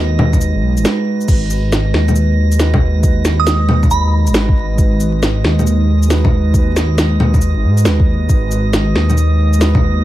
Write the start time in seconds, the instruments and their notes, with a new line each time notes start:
Already playing: detuned saw bass D#2, synth keys G#3 D#4 F#4 B4, analog synth pad G#3, synth texture D#5
0.19 detuned saw bass D#2, low bongo
0.33 kick, low bongo, shaker
0.41 shaker
0.55 detuned saw bass G#1
0.62 detuned saw bass B1
0.77 detuned saw bass G#1, shaker
0.83 synth keys G#3 D#4 F#4 B4, snare, shaker
1.21 synth keys G#3, shaker
1.27 detuned saw bass G#1, synth keys D#4 F#4, synth texture D#5, kick, crash, shaker
1.32 synth keys B4
1.50 shaker
1.72 snare, shaker
1.94 detuned saw bass D#2, snare
2.08 low bongo, shaker
2.16 shaker
2.52 shaker
2.58 synth keys G#3 D#4 F#4 B4, snare, shaker
2.74 kick, low bongo
3.00 synth keys G#3 D#4, kick, shaker
3.05 synth keys F#4 B4
3.25 snare, shaker
3.40 synth bell D#6
3.47 snare, shaker
3.69 detuned saw bass D#2, low bongo
3.83 kick, low bongo, shaker
3.91 synth bell B5, shaker
4.27 detuned saw bass G#1, shaker
4.33 synth keys G#3 D#4 F#4 B4, snare, shaker
4.49 kick
4.75 synth keys G#3 D#4, kick, shaker
4.80 synth keys F#4 B4
5.00 shaker
5.23 snare, shaker
5.45 detuned saw bass D#2, snare
5.59 low bongo, shaker
5.67 shaker
6.03 shaker
6.08 synth keys G#3 D#4 F#4, snare, shaker
6.12 synth keys B4
6.24 kick, low bongo
6.50 synth keys G#3 D#4, kick
6.54 synth keys F#4, shaker
6.58 synth keys B4
6.76 snare, shaker
6.98 snare, shaker
7.20 detuned saw bass D#2, low bongo
7.34 kick, low bongo, shaker
7.41 shaker
7.56 detuned saw bass G#1
7.64 detuned saw bass G#2
7.78 shaker
7.84 detuned saw bass D#2, synth keys G#3 D#4 F#4 B4, snare, shaker
8.00 kick
8.26 detuned saw bass G#1, synth keys G#3 D#4, kick, shaker
8.31 synth keys F#4 B4
8.51 shaker
8.73 snare, shaker
8.95 detuned saw bass D#2, snare
9.10 low bongo, shaker
9.17 shaker
9.53 shaker
9.58 synth keys G#3 D#4 F#4 B4, snare, shaker
9.75 kick, low bongo
10.00 synth keys G#3